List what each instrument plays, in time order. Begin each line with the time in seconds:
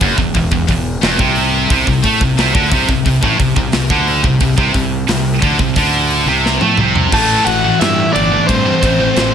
0.01 fingered electric bass F#1, distorted electric guitar F#2, kick, open hi-hat
0.18 fingered electric bass E1, distorted electric guitar E2, kick
0.34 fingered electric bass E1, distorted electric guitar E2, kick, open hi-hat
0.51 fingered electric bass E1, distorted electric guitar E2, kick
0.67 fingered electric bass E1, distorted electric guitar E2, kick, open hi-hat
1.02 fingered electric bass E1, distorted electric guitar E2, snare, open hi-hat
1.18 fingered electric bass C2, distorted electric guitar C3, kick
1.35 open hi-hat
1.70 fingered electric bass C2, distorted electric guitar C3, kick, open hi-hat
1.87 fingered electric bass C2, distorted electric guitar C3, kick
2.03 fingered electric bass A2, distorted electric guitar A3, kick, open hi-hat
2.21 fingered electric bass C2, distorted electric guitar C3, kick
2.38 fingered electric bass C2, distorted electric guitar C3, snare, open hi-hat
2.55 fingered electric bass D2, distorted electric guitar D3, kick
2.71 fingered electric bass C2, distorted electric guitar C3, kick, open hi-hat
2.89 fingered electric bass C2, distorted electric guitar C3, kick
3.05 fingered electric bass C2, distorted electric guitar C3, kick, open hi-hat
3.23 fingered electric bass A1, distorted electric guitar A2, kick
3.39 fingered electric bass C2, distorted electric guitar C3, kick, open hi-hat
3.56 fingered electric bass C2, distorted electric guitar C3, kick
3.72 fingered electric bass C2, distorted electric guitar C3, snare, open hi-hat
3.90 fingered electric bass D2, distorted electric guitar D3, kick
4.08 open hi-hat
4.24 fingered electric bass C2, distorted electric guitar C3, kick
4.40 fingered electric bass C2, distorted electric guitar C3, kick, open hi-hat
4.58 fingered electric bass C2, distorted electric guitar C3, kick
4.74 fingered electric bass C2, distorted electric guitar C3, kick, open hi-hat
5.08 fingered electric bass C2, distorted electric guitar C3, snare, open hi-hat
5.41 fingered electric bass D2, distorted electric guitar D3, kick, open hi-hat
5.59 fingered electric bass C2, distorted electric guitar C3, kick
5.76 fingered electric bass D2, distorted electric guitar D3, kick, open hi-hat
6.10 open hi-hat
6.26 fingered electric bass C2, distorted electric guitar C3
6.46 snare
6.61 fingered electric bass A2, distorted electric guitar A3, high tom
6.77 fingered electric bass C2, distorted electric guitar C3, mid tom
6.96 floor tom
7.12 fingered electric bass A1, distorted electric guitar A2 E3 A3, lead electric guitar A4 A5, kick, crash
7.45 fingered electric bass A1, distorted electric guitar A2 E3, lead electric guitar F#4 F#5, ride
7.64 distorted electric guitar A2 E3
7.79 fingered electric bass G2, distorted electric guitar A2 E3, lead electric guitar E4 E5, snare, ride
8.13 fingered electric bass G1, distorted electric guitar A2 E3, lead electric guitar D4 D5, ride
8.32 distorted electric guitar A2 E3
8.46 fingered electric bass G2, distorted electric guitar A2 E3, lead electric guitar C4 C5, kick, ride
8.66 distorted electric guitar A2 E3
8.81 fingered electric bass A1, distorted electric guitar A2 E3 A3, kick, ride
9.00 distorted electric guitar A2 E3
9.16 fingered electric bass A1, distorted electric guitar A2 E3 A3, snare, ride